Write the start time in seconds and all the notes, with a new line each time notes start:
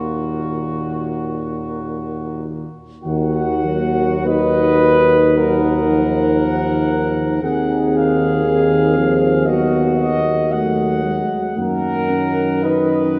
Already playing: D#2 A#2 D#3 A#3 F#4
3.03 D#2 D#3 A#3 F#4 F#5
3.65 F#3
4.25 D#4 B4 D#5
5.36 F#3 A#4 F#5
5.89 F3
7.43 D#2 D#3 C4 G#4 F#5
7.95 F5
8.45 D#3 C4
8.96 F3
9.45 F#3 B3 F#4 D#5
9.98 D#5
10.50 F#3 A3 F#5
11.04 G#3
11.57 F#2 D#3 A#3 A#4 F#5
12.10 C#4
12.62 D#4 B4 D#5